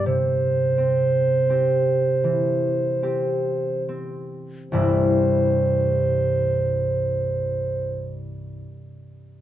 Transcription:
<<
  \new Staff \with { instrumentName = "Clarinet" } { \time 3/4 \key c \major \tempo 4 = 38 c''2~ c''8 r8 | c''2. | }
  \new Staff \with { instrumentName = "Harp" } { \time 3/4 \key c \major <c g'>8 c'8 <c' g'>8 e8 <c' g'>8 c'8~ | c'2. | }
  \new Staff \with { instrumentName = "Harp" } { \clef bass \time 3/4 \key c \major r2. | <c, g, e g c' e'>2. | }
>>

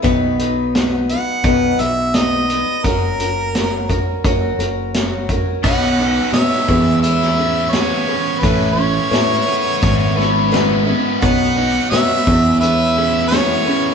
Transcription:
<<
  \new Staff \with { instrumentName = "Harmonica" } { \time 4/4 \key e \major \tempo 4 = 86 r4. fis''4 e''8 dis''4 | ais'2 r2 | fis''4 e''4 e''4 cis''4 | b'8 cis''2. r8 |
fis''4 e''4 e''4 cis''4 | }
  \new Staff \with { instrumentName = "Harmonium" } { \time 4/4 \key e \major r1 | r1 | r1 | r1 |
<b fis' cis'' fis''>4. <e e' gis' cis''>2~ <e e' gis' cis''>8 | }
  \new Staff \with { instrumentName = "Overdriven electric guitar" } { \time 4/4 \key e \major r1 | r1 | b8 dis'8 cis''8 e,8 e'8 cis'8 b8 cis'8 | a,8 cis'8 e'8 b8 gis,8 cis'8 b8 cis'8 |
b8 dis'8 cis''8 e,8 b'8 cis'8 b8 cis'8 | }
  \new Staff \with { instrumentName = "Steel-string acoustic guitar" } { \time 4/4 \key e \major <b, dis fis b dis' b'>8 <fis b dis' b'>8 <fis b dis' b'>8 <fis b dis' b'>8 <b, dis fis b dis' b'>8 <fis b b'>8 <fis b dis' b'>8 <fis b dis' b'>8 | <fis cis' fis' ais'>8 <cis' fis' ais'>8 <fis cis' fis' ais'>8 <cis' fis' ais'>8 <fis cis' fis' ais'>8 <cis' fis' ais'>8 <fis cis' fis' ais'>8 <cis' fis' ais'>8 | <b, dis fis cis' dis' b'>8 <fis cis' dis' b'>8 <b, dis fis cis' b'>8 <cis' gis' b'>8 <gis cis' gis' b'>8 <cis' gis' b'>8 <e gis cis' gis' b'>8 <cis' gis' b'>8 | <a cis' e' b'>8 <cis' e' b'>8 <a cis' e' b'>8 <cis' e' b'>8 <gis b e' b'>8 <gis b e' b'>8 <gis, cis gis b e' b'>8 <gis b e' b'>8 |
<b, dis fis cis' dis' b'>8 <fis cis' dis' b'>8 <b, dis fis cis' b'>8 <cis' gis' b'>8 <gis cis' gis' b'>8 <cis' gis' b'>8 <e gis cis' gis' b'>8 <cis' gis' b'>8 | }
  \new Staff \with { instrumentName = "Picked electric bass" } { \clef bass \time 4/4 \key e \major b,,2 b,,8 b,,4. | fis,,2 fis,,8 fis,,4. | b,,4 b,16 r16 e,2 r8 | a,,4 a,8 r8 gis,,2 |
b,,4 b,16 r16 e,2 r8 | }
  \new DrumStaff \with { instrumentName = "Drums" } \drummode { \time 4/4 <hh bd>8 hh8 <hh sn>8 hh8 <hh bd>8 hh8 <hh sn>8 hh8 | <hh bd>8 hh8 <hh sn>8 <hh bd>8 <hh bd>8 hh8 <hh sn>8 <hh bd>8 | <cymc bd>4 <hh sn>16 sn16 bd8 hh16 sn8. <hh sn>4 | <hh bd>4 <hh sn>4 <hh bd>8 sn8 <hh sn>4 |
<hh bd>4 <hh sn>8 bd8 hh4 <hh sn>4 | }
>>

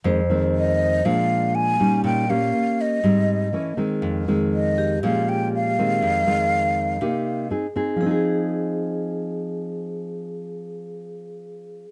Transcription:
<<
  \new Staff \with { instrumentName = "Flute" } { \time 4/4 \key f \minor \tempo 4 = 121 r4 ees''4 f''4 aes''4 | g''8 f''4 ees''2 r8 | r4 ees''4 f''8 g''8 f''4~ | f''2. r4 |
r1 | r1 | }
  \new Staff \with { instrumentName = "Vibraphone" } { \time 4/4 \key f \minor c''4. r2 r8 | r1 | r4. g'4 r4. | r1 |
aes'1~ | aes'1 | }
  \new Staff \with { instrumentName = "Nylon-string guitar" } { \time 4/4 \key f \minor << { f,2 bes,2 | bes,4 r4 aes,4 r4 | f,2 bes,2 | f,2 c4 r4 |
<f c' ees' aes'>1~ | <f c' ees' aes'>1 | } \\ { <ees aes c'>8 <ees aes c'>4. <f aes d'>4. <g des' ees'>8~ | <g des' ees'>8 <bes des' g'>4. <g c' ees'>4 <e a cis'>8 <dis gis c'>8~ | <dis gis c'>8 <ees aes c'>4. <f aes des'>4. <ees aes c'>8~ | <ees aes c'>8 <ees aes c'>4. <bes ees' g'>4 <c' ees' aes'>8 <c' ees' aes'>8~ |
<c' ees' aes'>8 r2. r8 | r1 | } >> }
>>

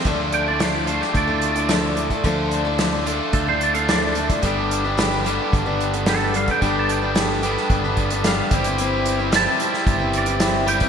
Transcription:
<<
  \new Staff \with { instrumentName = "Clean electric guitar" } { \time 4/4 \key d \dorian \tempo 4 = 110 r8 g''16 d''16 f''16 d''16 c''16 g'16 d''2 | r2 a'16 c''16 d''16 f''16 d''4~ | d''2 r4 a'8 f''16 g''16~ | g''16 a''16 g''8 r2 f''8 d''8~ |
d''8 g''8 a''4. d''4 g''8 | }
  \new Staff \with { instrumentName = "Steel-string acoustic guitar" } { \time 4/4 \key d \dorian <d f a d' a'>8. <a d' e' a'>16 <d f a d' e' a'>8 <a d' a'>8. <a d' e' a'>8 <a d' e' a'>16 <d f a d' e' a'>8 <a d' e' a'>16 <a d' e' a'>16 | <d f a d' a'>8. <a d' e' a'>16 <d f a d' e' a'>16 <a d' e' a'>16 <a d' a'>8. <a d' e' a'>8 <a d' e' a'>16 <d f a d' e' a'>8 <a d' e' a'>16 <a d' e' a'>16 | <g d' a' b'>8. <d' a' b'>16 <g d' a' b'>8 <g d' a' b'>8. <d' a' b'>8 <d' a' b'>16 <g d' a' b'>8 <g d' a' b'>16 <d' a' b'>16 | <g d' a' b'>8. <d' a' b'>16 <g d' a' b'>8 <g d' a' b'>8. <d' a' b'>8 <d' a' b'>16 <g d' a' b'>8 <g c' e' b'>16 <c' e' b'>16 |
<g c' e' b'>8. <c' e' b'>16 <g c' e' b'>16 <c' e' b'>16 <g c' e' b'>8. <c' e' b'>8 <c' e' b'>16 <g c' e' b'>8 <g c' e' b'>16 <c' e' b'>16 | }
  \new Staff \with { instrumentName = "Overdriven electric guitar" } { \time 4/4 \key d \dorian <d a d' f'>4. <d a d' f'>2~ <d a d' f'>8 | <d a d' f'>4. <d a d' f'>2~ <d a d' f'>8 | <g, d g b d' g'>4. <g, d g b d' g'>2~ <g, d g b d' g'>8 | <g, d g b d' g'>4. <g, d g b d' g'>2 <g c' e' g'>8~ |
<g c' e' g'>4 <g c' e' g'>2~ <g c' e' g'>8 <g c' e' g'>8 | }
  \new Staff \with { instrumentName = "Fingered electric bass" } { \clef bass \time 4/4 \key d \dorian d,2 d,2 | d,2 d,2 | g,,2 g,,2 | g,,2 g,,4. g,,8~ |
g,,4. r8 g,,2 | }
  \new DrumStaff \with { instrumentName = "Drums" } \drummode { \time 4/4 <hh bd>8 hh8 <hh sn>8 hh16 sn16 <hh bd>8 hh16 hh16 <hh sn>8 hh16 <hh bd>16 | <hh bd>8 hh8 <hh sn>8 hh8 <hh bd>8 hh16 hh16 <hh sn>8 hh16 <hh bd>16 | <hh bd>8 hh8 <hh sn>8 hh8 <hh bd>8 hh16 hh16 <hh sn>8 hh16 <hh bd>16 | <hh bd>8 hh8 <hh sn>8 hh16 sn16 <hh bd>8 <hh bd>16 hh16 <hh sn>8 <hh bd>16 hh16 |
hh8 hh8 <hh sn>8 hh16 sn16 <hh bd>8 hh16 hh16 <hh sn>8 hh16 <hh bd>16 | }
>>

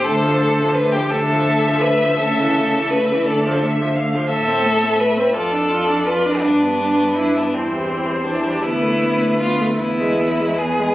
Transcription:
<<
  \new Staff \with { instrumentName = "Violin" } { \time 6/8 \key d \dorian \tempo 4. = 55 c''4. e''4.~ | e''4. d''8 e''8 f''8 | e''4. d''4. | b'4. c''4. |
b'4. b'4. | }
  \new Staff \with { instrumentName = "Violin" } { \time 6/8 \key d \dorian a'4 b'16 g'16 a'4 b'8 | a'4 b'8 a'8 r4 | a'4 b'8 a'4 b'8 | d'4 e'16 d'16 c'4 d'8 |
e'4 f'8 e'4 gis'8 | }
  \new Staff \with { instrumentName = "Viola" } { \time 6/8 \key d \dorian a16 f16 a16 f16 a16 f16 a16 f16 a16 f16 a16 f16 | a16 e16 a16 e16 a16 e16 a16 f16 a16 f16 a16 f16 | a16 c'16 a16 c'16 a16 c'16 f'16 d'16 f'16 d'16 f'16 d'16 | d'16 b16 d'16 b16 d'16 b16 e16 g16 e16 g16 e16 g16 |
b16 a16 b16 a16 b16 a16 b16 gis16 b16 gis16 b16 gis16 | }
  \new Staff \with { instrumentName = "Cello" } { \clef bass \time 6/8 \key d \dorian d4. d4. | cis4. d4. | a,4. f,4. | g,4. e,4. |
d,4. e,4. | }
>>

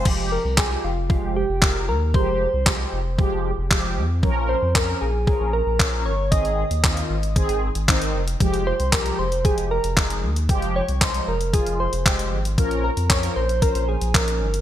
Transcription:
<<
  \new Staff \with { instrumentName = "Soft synth lead" } { \time 4/4 \key f \minor \tempo 4 = 115 r8 bes'8 aes'8 f'8 f'8 g'4 bes'8 | c''2 r2 | r8 c''8 bes'8 aes'8 aes'8 bes'4 des''8 | ees''2 r2 |
r8 c''8 bes'8 c''8 aes'8 bes'4 r8 | r8 des''8 c''8 bes'8 aes'8 c''4 r8 | r8 bes'8 des''8 c''8 bes'8 aes'8 bes'4 | }
  \new Staff \with { instrumentName = "Analog polysynth" } { \clef bass \time 4/4 \key f \minor <f aes g'>8 r8 <f aes g'>8 r8 <f aes g'>8 r8 <f aes bes'>8 r8 | <f aes g'>8 r8 <f aes g'>8 r8 <f aes g'>8 r8 <f aes g'>8 r8 | <f des' bes'>8 r8 <f des' bes'>8 r8 <f des' bes'>8 r8 <f des' bes'>8 r8 | <ees c' aes'>8 r8 <ees c' f'>8 r8 <ees c' aes'>8 r8 <ees c' ees'>8 r8 |
<f aes g'>8 r8 <f aes g'>8 r8 <f aes g'>8 r8 <f aes ees'>8 r8 | <f aes g'>8 r8 <f aes ees'>8 r8 <f aes f'>8 r8 <f aes g'>8 r8 | <f des' bes'>8 r8 <f des' bes'>8 r8 <f des' c''>8 r8 <f des' ees'>8 r8 | }
  \new Staff \with { instrumentName = "Sub bass" } { \clef bass \time 4/4 \key f \minor f,,8. c,8. f,,8. f,,8 f,,8. ees,8 | f,,8. c,8. f,,8. f,,8 f,,8. f,8 | bes,,8. f,8. bes,,8. bes,,8 bes,,8. g,,8 | aes,,8. ees,8. aes,,8. aes,,8 aes,,8. f,,8 |
f,,8. c,8. f,,8. f,,8 f,,8. ees,8 | f,,8. c,8. f,,8. f,,8 f,,8. aes,,8 | bes,,8. f,8. bes,,8. bes,,8 bes,,8. g,,8 | }
  \new DrumStaff \with { instrumentName = "Drums" } \drummode { \time 4/4 <cymc bd>4 <hc bd>4 bd4 <hc bd>4 | bd4 <hc bd>4 bd4 <hc bd>4 | bd4 <hc bd>4 bd4 <hc bd>4 | <hh bd>16 hh8 hh16 <hc hh bd>16 hh8 hh16 <hh bd>16 hh8 hh16 <hc hh bd>16 hh8 hh16 |
<hh bd>16 hh8 hh16 <hc hh bd>16 hh8 hh16 <hh bd>16 hh8 hh16 <hc hh bd>16 hh8 hh16 | <hh bd>16 hh8 hh16 <hc hh bd>16 hh8 hh16 <hh bd>16 hh8 hh16 <hc hh bd>16 hh8 hh16 | <hh bd>16 hh8 hh16 <hc hh bd>16 hh8 hh16 <hh bd>16 hh8 hh16 <hc hh bd>16 hh8 hh16 | }
>>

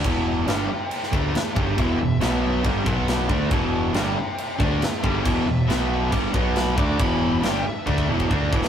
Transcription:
<<
  \new Staff \with { instrumentName = "Lead electric guitar" } { \time 4/4 \key b \dorian \tempo 4 = 138 e''8 r8 <e'' g''>8 <e'' g''>8 <e'' g''>8 <gis' e''>8 <gis' e''>8 <gis' e''>8 | e''2 r2 | r4 <e'' g''>8 <e'' g''>8 <e'' g''>8 <gis' e''>8 <gis' e''>8 <gis' e''>8 | e''2 r4 b''8 d'''8 |
b''4 g''8 e''4 r4. | }
  \new Staff \with { instrumentName = "Distorted electric guitar" } { \clef bass \time 4/4 \key b \dorian <e, b, e>4 <g, d g>8 r4 <d a d'>8 r8 <g, d g>8 | <e, b, e>8 <e, b,>8 <b, fis b>4 <g, d g>8 <b, fis b>4 <d a d'>8 | <e, b, e>4 <g, d g>8 r4 <d a d'>8 r8 <g, d g>8 | <e, b, e>8 <e, b,>8 <b, fis b>4 <g, d g>8 <b, fis b>4 <d a d'>8 |
<e, b, e>4 <g, d g>8 r8 <d a d'>8 <e, b, e>8 <d a d'>8 <e, b, e>8 | }
  \new Staff \with { instrumentName = "Distorted electric guitar" } { \clef bass \time 4/4 \key b \dorian r1 | <e, b, e>8 <e, b,>8 <b, fis b>4 <g, d g>8 <b, fis b>4 <d a d'>8 | <e, b, e>4 <g, d g>8 r4 <d a d'>8 r8 <g, d g>8 | <e, b, e>8 <e, b,>8 <b, fis b>4 <g, d g>8 <b, fis b>4 <d a d'>8 |
<e, b, e>4 <g, d g>8 r8 <d a d'>8 <e, b, e>8 <d a d'>8 <e, b, e>8 | }
  \new Staff \with { instrumentName = "Overdriven electric guitar" } { \clef bass \time 4/4 \key b \dorian <e, b, e>4 <g, d g>8 r4 <d a d'>8 r8 <g, d g>8 | <e, b, e>8 <e, b,>8 <b, fis b>4 <g, d g>8 <b, fis b>4 <d a d'>8 | <e, b, e>4 <g, d g>8 r4 <d a d'>8 r8 <g, d g>8 | <e, b, e>8 <e, b,>8 <b, fis b>4 <g, d g>8 <b, fis b>4 <d a d'>8 |
<e, b, e>4 <g, d g>8 r8 <d a d'>8 <e, b, e>8 <d a d'>8 <e, b, e>8 | }
  \new Staff \with { instrumentName = "Picked electric bass" } { \clef bass \time 4/4 \key b \dorian e,,4 g,,8 r4 d,8 r8 g,,8 | e,,8 e,,8 b,,4 g,,8 b,,4 d,8 | e,,4 g,,8 r4 d,8 r8 g,,8 | e,,8 e,,8 b,,4 g,,8 b,,4 d,8 |
e,,4 g,,8 r8 d,8 e,,8 d,8 e,,8 | }
  \new DrumStaff \with { instrumentName = "Drums" } \drummode { \time 4/4 <cymc bd>4 <cymc sn>4 cymc16 sn16 bd8 <cymc sn>8 bd8 | <cymc bd>4 <cymc sn>4 <cymc bd>8 bd8 <cymc sn>8 bd8 | <cymc bd>4 <cymc sn>4 cymc8 bd8 <cymc sn>8 bd8 | <cymc bd>4 <cymc sn>4 <cymc bd>8 bd8 <cymc sn>8 bd8 |
<cymc bd>4 <cymc sn>4 bd16 bd8 bd16 bd8 bd16 sn16 | }
>>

